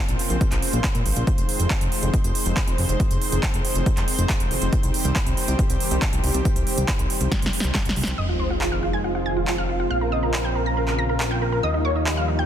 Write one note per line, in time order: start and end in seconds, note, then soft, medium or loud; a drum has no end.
0.00 1.26 C#3 medium
0.00 1.23 A#3 medium
0.00 1.26 C4 medium
0.00 4.69 F4 medium
0.00 8.14 C5 medium
0.09 0.16 A#1 medium
0.09 closed hi-hat medium
0.19 open hi-hat loud
0.30 0.37 A#1 medium
0.30 closed hi-hat medium
0.41 kick loud
0.41 closed hi-hat medium
0.52 0.59 A#1 medium
0.52 clap soft
0.52 closed hi-hat medium
0.62 open hi-hat loud
0.73 0.80 A#1 medium
0.73 closed hi-hat medium
0.84 kick loud
0.84 clap loud
0.84 closed hi-hat medium
0.95 1.02 A#2 medium
0.95 closed hi-hat medium
1.06 1.13 G#1 medium
1.06 open hi-hat loud
1.16 1.24 A#1 medium
1.16 closed hi-hat medium
1.27 8.14 D#3 medium
1.27 4.69 G#3 medium
1.27 8.14 C4 medium
1.27 kick loud
1.27 closed hi-hat medium
1.38 1.45 F1 medium
1.38 closed hi-hat medium
1.49 open hi-hat loud
1.60 1.67 F1 medium
1.60 closed hi-hat medium
1.70 kick loud
1.70 clap loud
1.70 closed hi-hat medium
1.81 1.88 F1 medium
1.81 closed hi-hat medium
1.92 open hi-hat loud
2.03 2.10 F1 medium
2.03 closed hi-hat medium
2.14 kick loud
2.14 closed hi-hat medium
2.24 2.32 F1 medium
2.24 closed hi-hat medium
2.35 open hi-hat loud
2.46 2.53 F1 medium
2.46 closed hi-hat medium
2.57 kick loud
2.57 clap loud
2.57 closed hi-hat medium
2.68 2.75 F1 medium
2.68 closed hi-hat medium
2.78 2.86 F1 medium
2.78 open hi-hat loud
2.89 2.96 F1 medium
2.89 closed hi-hat medium
3.00 kick loud
3.00 closed hi-hat medium
3.11 3.18 F1 medium
3.11 closed hi-hat medium
3.22 open hi-hat medium
3.32 3.39 F1 medium
3.32 closed hi-hat medium
3.43 kick loud
3.43 clap loud
3.43 closed hi-hat medium
3.54 3.61 F1 medium
3.54 closed hi-hat medium
3.65 open hi-hat loud
3.75 3.83 F1 medium
3.75 closed hi-hat medium
3.86 kick loud
3.86 closed hi-hat medium
3.97 4.04 F1 medium
3.97 clap soft
3.97 closed hi-hat medium
4.08 open hi-hat loud
4.19 4.26 F1 medium
4.19 closed hi-hat medium
4.29 kick loud
4.29 clap loud
4.29 closed hi-hat medium
4.40 4.47 F1 medium
4.40 closed hi-hat medium
4.51 4.58 F1 medium
4.51 open hi-hat medium
4.62 4.69 F1 medium
4.62 closed hi-hat medium
4.73 8.14 G3 medium
4.73 8.14 G4 medium
4.73 kick loud
4.73 closed hi-hat medium
4.83 4.91 C2 medium
4.83 closed hi-hat medium
4.94 open hi-hat loud
5.05 5.12 C2 medium
5.05 closed hi-hat medium
5.16 kick loud
5.16 clap loud
5.16 closed hi-hat medium
5.26 5.34 C2 medium
5.26 closed hi-hat medium
5.37 open hi-hat loud
5.48 5.55 C2 medium
5.48 closed hi-hat medium
5.59 kick loud
5.59 closed hi-hat medium
5.70 5.77 C2 medium
5.70 closed hi-hat medium
5.80 open hi-hat loud
5.91 5.98 C2 medium
5.91 closed hi-hat medium
6.02 kick loud
6.02 clap loud
6.02 closed hi-hat medium
6.13 6.20 C2 medium
6.13 closed hi-hat medium
6.24 6.31 C2 medium
6.24 open hi-hat medium
6.34 6.42 C2 medium
6.34 closed hi-hat medium
6.45 kick loud
6.45 closed hi-hat medium
6.56 6.63 C2 medium
6.56 closed hi-hat medium
6.67 open hi-hat loud
6.78 6.85 C2 medium
6.78 closed hi-hat medium
6.88 kick loud
6.88 clap loud
6.88 closed hi-hat medium
6.99 7.06 C2 medium
6.99 closed hi-hat medium
7.10 open hi-hat loud
7.21 7.28 C2 medium
7.21 closed hi-hat medium
7.32 kick loud
7.32 snare medium
7.32 closed hi-hat medium
7.42 7.50 C2 medium
7.42 snare medium
7.42 closed hi-hat medium
7.53 open hi-hat loud
7.60 7.71 C2 medium
7.60 snare medium
7.60 closed hi-hat medium
7.75 kick loud
7.75 snare medium
7.75 clap loud
7.75 closed hi-hat medium
7.85 7.93 C2 medium
7.85 snare medium
7.85 closed hi-hat medium
7.96 8.04 C2 medium
7.96 open hi-hat medium
8.03 8.14 C2 medium
8.03 snare loud
8.03 closed hi-hat medium
8.18 9.88 F1 medium
8.18 9.89 D#3 medium
8.18 11.60 F3 medium
8.18 9.89 G#3 medium
8.18 11.60 C4 medium
8.18 12.46 F4 medium
8.18 8.25 D#5 medium
8.18 8.25 D#6 loud
8.18 sub drop medium
8.29 8.36 F4 medium
8.29 8.36 F5 medium
8.40 8.47 C5 medium
8.40 8.47 C6 medium
8.50 8.57 F4 medium
8.50 8.57 F5 medium
8.61 8.68 F4 medium
8.61 8.68 F5 medium
8.61 clap loud
8.72 8.79 F5 medium
8.72 8.79 F6 medium
8.83 8.90 F4 medium
8.83 8.90 F5 medium
8.93 9.01 G#5 medium
8.93 9.00 G#6 medium
9.04 9.11 F4 medium
9.04 9.11 F5 medium
9.15 9.22 F4 medium
9.15 9.22 F5 medium
9.26 9.33 G#5 medium
9.26 9.33 G#6 medium
9.37 9.44 F4 medium
9.37 9.44 F5 medium
9.47 9.54 F4 medium
9.47 9.54 F5 medium
9.47 clap loud
9.58 9.65 F5 medium
9.58 9.65 F6 medium
9.69 9.76 F4 medium
9.69 9.76 F5 medium
9.80 9.87 F4 medium
9.80 9.87 F5 medium
9.91 11.61 A#1 medium
9.91 11.62 C#3 medium
9.91 12.46 A#3 medium
9.91 9.98 F5 loud
9.91 9.98 F6 medium
10.01 10.08 A#4 medium
10.01 10.08 A#5 medium
10.12 10.19 D#5 loud
10.12 10.19 D#6 medium
10.23 10.30 A#4 medium
10.23 10.30 A#5 medium
10.34 10.41 A#4 medium
10.34 10.41 A#5 medium
10.34 clap loud
10.44 10.52 G5 medium
10.44 10.52 G6 medium
10.55 10.62 A#4 medium
10.55 10.62 A#5 medium
10.66 10.73 A#5 medium
10.66 10.73 A#6 medium
10.77 10.84 A#4 medium
10.77 10.84 A#5 medium
10.88 10.95 A#4 medium
10.88 10.95 A#5 medium
10.88 clap soft
10.98 11.06 A#5 medium
10.98 11.06 A#6 medium
11.09 11.16 A#4 medium
11.09 11.16 A#5 medium
11.20 11.27 A#4 medium
11.20 11.27 A#5 medium
11.20 clap loud
11.31 11.38 G5 medium
11.31 11.38 G6 medium
11.42 11.49 A#4 medium
11.42 11.49 A#5 medium
11.52 11.59 A#4 medium
11.52 11.59 A#5 medium
11.63 12.46 D#2 medium
11.63 12.46 D#3 medium
11.63 12.46 F3 medium
11.63 12.46 G3 medium
11.63 11.70 D#5 loud
11.63 11.70 D#6 loud
11.74 11.81 D#4 medium
11.74 11.81 D#5 medium
11.85 11.92 C#5 loud
11.85 11.92 C#6 medium
11.96 12.03 D#4 medium
11.96 12.03 D#5 medium
12.06 12.13 D#4 medium
12.06 12.13 D#5 medium
12.06 clap loud
12.17 12.24 F5 medium
12.17 12.24 F6 medium
12.28 12.35 D#4 medium
12.28 12.35 D#5 medium
12.39 12.46 G5 medium
12.39 12.46 G6 medium